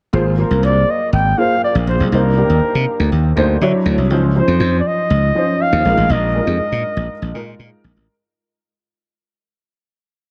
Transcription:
0.13 G#1 A#3 F4 G#4 C5
0.38 A#3 F4 G#4 A#4 C5
0.51 C2
0.63 C2 D5
0.90 D#5
1.13 G#1 G5
1.37 A#3 F4 G#4 C5 F5
1.64 D5
1.75 A#1
1.87 A#1 C5
2.00 B1
2.07 C5
2.12 C2 A#3 D4 D#4 A#4 C5
2.37 A#3 D4 D#4 G4
2.50 D#2
2.62 muted slap bass stroke
2.75 C3
3.00 D2
3.12 D#2
3.36 D2 A#3 D4 D#4 C5
3.61 D3 F#3 D4 E4 C#5
3.86 D2
3.98 C2
4.10 C#2 F3 C#4 D#4 C5
4.35 F3 C#4 D#4 C5
4.48 F2
4.60 F2
4.79 D5
4.87 D#5
5.10 C#2
5.35 F3 C#4 D#4 C5
5.62 F5
5.73 D#2
5.85 A#1 G#3 D4 F4 A#4
5.91 D#4
5.97 A1
6.09 A#1 D#5
6.34 G#3 D4 F4 A#4
6.41 D#4
6.47 F2
6.60 muted slap bass stroke
6.72 A#2
6.97 A#1
7.22 A#1
7.34 A#2 G#3 D#4 F4 A#4
7.59 A#2
7.84 A#1
7.96 A1

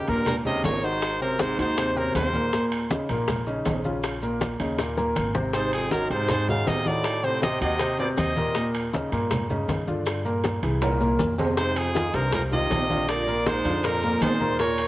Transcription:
Already playing: D#2 G4
0.07 D#2 G2 A#2 A#3 A#4, high bongo, high conga, high timbale, maracas
0.26 G2 A#4, high bongo, high conga, low conga, high timbale, maracas
0.45 C3 C#3 C#4 D#4 D#5, high bongo, high conga, low conga, maracas
0.64 G#1 A#2 C#5, high bongo, low bongo, high conga, high timbale, low timbale, maracas
0.83 G#2 D#3 D#4 F#4 C5, high bongo, maracas
1.02 high bongo, high conga, high timbale, maracas
1.21 F#2 C3 C4 A#4 C5, high conga, maracas
1.39 G#2 C5, high bongo, high conga, high timbale, maracas
1.58 D#2 G#2 D#3 D#4 F#4 C5, high bongo, high conga, high timbale, maracas
1.77 C3 C4 C5, high bongo, high conga, high timbale, maracas
1.96 F#2 C3 C4 A#4 C5, high bongo, high conga, maracas
2.15 D#2 G#2 C5, high bongo, low bongo, high conga, high timbale, low timbale, maracas
2.33 A#2 A#3 A#4, high bongo, high conga, maracas
2.52 A#2 A#3 A#4, high bongo, high conga, high timbale, maracas
2.71 high conga, high timbale, maracas
2.90 C#3 C#4 D#4, high bongo, high conga, maracas
3.09 A#1 A#2 A#3 A#4, high bongo, high conga, high timbale, maracas
3.28 high bongo, high conga, low conga, high timbale, maracas
3.47 C#3 C#4 D#4, high bongo, high conga, maracas
3.65 A#1, high bongo, low bongo, high conga, high timbale, low timbale, maracas
3.84 C#3 C#4 F4, high bongo, high conga, maracas
4.03 high bongo, high conga, high timbale, maracas
4.22 A#2 A#3 A#4, high conga, maracas
4.41 high bongo, high conga, high timbale, maracas
4.60 D#2 C#3 C#4 D#4, high bongo, high conga, high timbale, maracas
4.78 A#2 A#3 A#4, high bongo, high conga, high timbale, maracas
4.97 A#2 A#3 A#4, low bongo, high conga, maracas
5.16 G#1, low bongo, high conga, high timbale, maracas
5.35 C3 C4 C5, low bongo, high conga, maracas
5.53 G#2 C3 C4 C5, high bongo, high timbale, maracas
5.72 F2 G#4, high conga, high timbale, maracas
5.91 F#2 D#3 D#4 F#4 A#4, high bongo, high conga, maracas
6.10 G#2 C3 C4 C5, high bongo, high conga, high timbale, maracas
6.29 G#2 C5, high bongo, high conga, low conga, high timbale, maracas
6.48 C#3 D#3 D#4 F#4 F5, high bongo, high conga, low conga, maracas
6.67 A2 C3 D#5, high bongo, low bongo, high conga, high timbale, low timbale, maracas
6.86 A2 D#3 D#4 F#4 D5, high bongo, high conga, maracas
7.04 high bongo, high conga, high timbale, maracas
7.23 A2 C3 C4 C5, high conga, maracas
7.42 C3 D#5, high bongo, high conga, high timbale, maracas
7.61 D#2 C3 D#3 D#4 F#4 D#5, high bongo, high conga, high timbale, maracas
7.79 C3 C4 C5, high bongo, high conga, high timbale, maracas
7.99 B2 C3 C4 C5 D5, high bongo, high conga, maracas
8.17 D#2 C3 D#5, high bongo, low bongo, high conga, high timbale, maracas
8.36 A#2 A#3 A#4, high bongo, high conga, maracas
8.55 A#2 A#3 A#4, high bongo, high timbale, maracas
8.74 high conga, high timbale, maracas
8.93 C#3 C#4 D#4, high bongo, high conga, maracas
9.12 G2 A#2 A#3 A#4, high bongo, high conga, high timbale, maracas
9.31 high bongo, high conga, low conga, high timbale, maracas
9.50 C#3 C#4 D#4, high bongo, high conga, low conga, maracas
9.68 G2, high bongo, low bongo, high conga, high timbale, maracas
9.87 D3 D4 F4, high bongo, high conga, maracas
10.06 high bongo, high conga, high timbale, maracas
10.25 A#2 A#3 A#4, high conga, maracas
10.44 high bongo, high conga, high timbale, maracas
10.63 C2 E3 E4 G#4, high bongo, high conga, high timbale, maracas
10.82 A#2 A#3 A#4, high bongo, high conga, high timbale, maracas
11.00 A#2 A#3 A#4, high bongo, high conga, maracas
11.19 F2, high bongo, low bongo, high conga, maracas
11.38 C3 C4 C5, high bongo, high conga, low timbale, maracas
11.57 G#2 C3 C4 C5, high bongo, high conga, high timbale, maracas
11.76 F2 G#4, high conga, high timbale, maracas
11.95 D#3 D#4 F4, high bongo, high conga, maracas
12.14 C2 G2 C3 C4 A#4 C5, high bongo, high conga, high timbale, maracas
12.32 F2 A#4, high bongo, high conga, low conga, high timbale, maracas
12.51 C3 D#3 D#4 F4 D#5, high bongo, high conga, low conga, maracas
12.70 A#1, high bongo, low bongo, high conga, high timbale, low timbale, maracas
12.90 D3 D4 F4, high bongo, high conga, maracas
13.08 A#2 D5, high bongo, high timbale, maracas
13.27 A#2 A#3 A#4, high conga, maracas
13.46 G#2 C5, high bongo, high conga, high timbale, maracas
13.65 F2 D3 D4 F4, high bongo, high conga, high timbale, maracas
13.83 F2 A#2 A#3 A#4, high bongo, high conga, high timbale, maracas
14.02 A#2 A#3 A#4, high bongo, high conga, maracas
14.20 D#2 G#2 C5, high bongo, low bongo, high conga, high timbale, low timbale, maracas
14.40 A#2 A#3 A#4, high bongo, high conga, maracas
14.59 A#2 A#3 A#4 C#5, high bongo, high conga, high timbale, maracas
14.78 high conga, high timbale, maracas

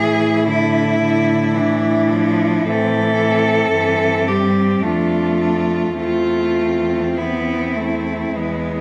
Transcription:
Already playing: A2 E3 E4 G#4
0.47 D3 E4
1.01 D3
1.54 E3 D4
2.10 F3
2.68 A2 E3 C4 A4
3.21 C4
3.73 G2 E3
4.27 G3 G4
4.83 F2 A3 D4 F4
5.41 D4
5.98 E2 A3 C4 F4
7.17 B3 E4
7.76 A3
8.36 E2 G#3 B3

